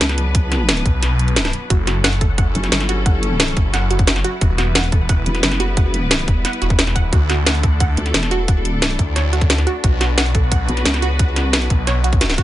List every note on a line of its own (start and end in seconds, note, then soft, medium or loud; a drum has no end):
0.00 0.84 C#2 loud
0.00 4.37 F#3 medium
0.00 1.68 B3 medium
0.00 1.66 D4 medium
0.00 1.67 B4 medium
0.00 snare loud
0.00 closed hi-hat loud
0.09 snare soft
0.09 closed hi-hat soft
0.18 closed hi-hat medium
0.35 kick loud
0.35 closed hi-hat loud
0.52 snare medium
0.52 closed hi-hat medium
0.69 snare loud
0.69 closed hi-hat loud
0.77 closed hi-hat soft
0.86 1.01 B1 loud
0.86 kick loud
0.86 closed hi-hat medium
1.02 1.52 B1 medium
1.02 snare soft
1.02 closed hi-hat loud
1.19 closed hi-hat medium
1.28 closed hi-hat soft
1.36 snare loud
1.36 closed hi-hat loud
1.45 snare soft
1.45 snare medium
1.45 closed hi-hat soft
1.53 closed hi-hat medium
1.70 2.03 F#1 loud
1.70 4.39 C#4 medium
1.70 9.80 E4 medium
1.70 1.78 F#4 medium
1.70 4.39 A4 medium
1.70 kick loud
1.70 closed hi-hat loud
1.87 1.95 F#4 medium
1.87 snare medium
1.87 closed hi-hat medium
2.04 2.54 F#1 loud
2.04 2.12 F#5 loud
2.04 snare loud
2.04 closed hi-hat loud
2.13 closed hi-hat soft
2.21 2.29 A4 medium
2.21 kick loud
2.21 closed hi-hat medium
2.38 2.46 F#5 loud
2.38 kick loud
2.38 closed hi-hat loud
2.55 2.71 F#1 loud
2.55 closed hi-hat medium
2.64 snare soft
2.64 closed hi-hat soft
2.72 3.55 G1 loud
2.72 snare loud
2.72 closed hi-hat loud
2.80 snare medium
2.80 closed hi-hat soft
2.89 3.01 F#4 loud
2.89 closed hi-hat medium
3.06 3.14 F#5 medium
3.06 kick loud
3.06 closed hi-hat loud
3.23 closed hi-hat medium
3.40 snare loud
3.40 closed hi-hat loud
3.48 closed hi-hat soft
3.57 3.72 F#1 loud
3.57 kick loud
3.57 closed hi-hat medium
3.74 4.23 F#1 medium
3.74 3.82 F#5 loud
3.74 snare medium
3.74 closed hi-hat medium
3.91 4.03 F#4 medium
3.91 closed hi-hat medium
3.99 kick loud
3.99 closed hi-hat soft
4.07 4.16 F#4 medium
4.07 snare loud
4.07 closed hi-hat medium
4.16 snare medium
4.16 closed hi-hat soft
4.24 4.36 F#4 loud
4.24 closed hi-hat medium
4.41 4.74 E1 loud
4.41 7.10 G3 medium
4.41 7.10 B3 medium
4.41 4.49 F#4 medium
4.41 7.10 B4 medium
4.41 kick loud
4.41 closed hi-hat medium
4.58 4.66 F#4 medium
4.58 snare medium
4.58 closed hi-hat medium
4.75 5.25 E1 medium
4.75 4.83 F#5 loud
4.75 snare loud
4.75 closed hi-hat loud
4.84 closed hi-hat soft
4.92 5.00 A4 medium
4.92 kick loud
4.92 closed hi-hat medium
5.09 5.17 F#5 loud
5.09 kick loud
5.09 closed hi-hat loud
5.26 5.42 E1 medium
5.26 closed hi-hat medium
5.35 snare soft
5.35 closed hi-hat soft
5.43 6.26 F#1 loud
5.43 snare loud
5.43 closed hi-hat medium
5.52 snare medium
5.52 closed hi-hat soft
5.60 5.72 F#4 loud
5.60 closed hi-hat medium
5.77 5.85 F#5 medium
5.77 kick loud
5.77 closed hi-hat medium
5.94 closed hi-hat medium
6.11 snare loud
6.11 closed hi-hat medium
6.19 closed hi-hat soft
6.28 6.43 E1 medium
6.28 kick loud
6.28 closed hi-hat medium
6.45 6.53 F#5 loud
6.45 snare soft
6.45 closed hi-hat medium
6.53 closed hi-hat soft
6.62 7.11 E1 loud
6.62 6.67 F#4 loud
6.62 closed hi-hat medium
6.70 kick loud
6.70 closed hi-hat soft
6.79 snare loud
6.79 closed hi-hat medium
6.87 snare soft
6.87 closed hi-hat soft
6.96 7.04 F#5 loud
6.96 kick medium
6.96 closed hi-hat medium
7.13 7.45 D2 loud
7.13 9.81 A3 medium
7.13 12.43 D4 medium
7.13 7.21 F#4 medium
7.13 9.81 A4 medium
7.13 kick loud
7.13 closed hi-hat medium
7.29 7.38 F#4 medium
7.29 snare medium
7.29 closed hi-hat medium
7.46 7.96 D2 loud
7.46 7.54 F#5 loud
7.46 snare loud
7.46 closed hi-hat medium
7.55 closed hi-hat soft
7.63 7.71 A4 medium
7.63 kick loud
7.63 closed hi-hat medium
7.80 7.88 F#5 loud
7.80 kick loud
7.80 closed hi-hat medium
7.97 8.13 D2 loud
7.97 closed hi-hat medium
8.06 snare soft
8.06 closed hi-hat soft
8.14 8.98 E1 loud
8.14 snare loud
8.14 closed hi-hat medium
8.23 snare soft
8.23 closed hi-hat soft
8.31 8.43 F#4 loud
8.31 closed hi-hat medium
8.48 8.56 F#5 medium
8.48 kick loud
8.48 closed hi-hat medium
8.65 closed hi-hat medium
8.82 snare loud
8.82 closed hi-hat loud
8.91 closed hi-hat soft
8.99 9.15 D2 medium
8.99 kick loud
8.99 closed hi-hat medium
9.16 9.65 D2 medium
9.16 9.24 C#5 loud
9.16 snare soft
9.16 closed hi-hat medium
9.33 9.45 F#4 medium
9.33 closed hi-hat medium
9.41 kick loud
9.41 closed hi-hat soft
9.50 9.58 F#4 medium
9.50 snare loud
9.50 closed hi-hat loud
9.58 snare soft
9.58 closed hi-hat soft
9.67 9.79 F#4 loud
9.67 closed hi-hat medium
9.84 10.16 B1 loud
9.84 12.43 B3 medium
9.84 12.43 F#4 medium
9.84 9.92 F#4 medium
9.84 12.43 B4 medium
9.84 kick loud
9.84 closed hi-hat loud
10.01 10.09 F#4 medium
10.01 snare medium
10.01 closed hi-hat medium
10.18 10.67 B1 medium
10.18 10.26 F#5 loud
10.18 snare loud
10.18 closed hi-hat loud
10.26 closed hi-hat soft
10.35 10.43 A4 medium
10.35 kick loud
10.35 closed hi-hat medium
10.52 10.60 F#5 loud
10.52 kick loud
10.52 closed hi-hat loud
10.69 10.84 B1 medium
10.69 closed hi-hat medium
10.77 snare soft
10.77 closed hi-hat soft
10.85 11.44 C#2 loud
10.85 snare loud
10.85 closed hi-hat loud
10.94 snare soft
10.94 closed hi-hat soft
11.02 11.14 F#4 loud
11.02 closed hi-hat medium
11.19 11.27 F#5 medium
11.19 kick loud
11.19 closed hi-hat loud
11.36 snare medium
11.36 closed hi-hat medium
11.44 11.69 C2 loud
11.53 snare loud
11.53 closed hi-hat loud
11.62 closed hi-hat soft
11.70 11.86 B1 medium
11.70 kick loud
11.70 closed hi-hat medium
11.87 12.37 B1 loud
11.87 11.95 C#5 loud
11.87 snare medium
11.87 closed hi-hat loud
12.04 12.16 F#4 medium
12.04 closed hi-hat medium
12.13 kick loud
12.13 closed hi-hat soft
12.21 12.29 F#4 medium
12.21 snare medium
12.21 closed hi-hat loud
12.30 snare medium
12.30 closed hi-hat soft
12.38 12.43 F#4 loud
12.38 kick medium
12.38 closed hi-hat medium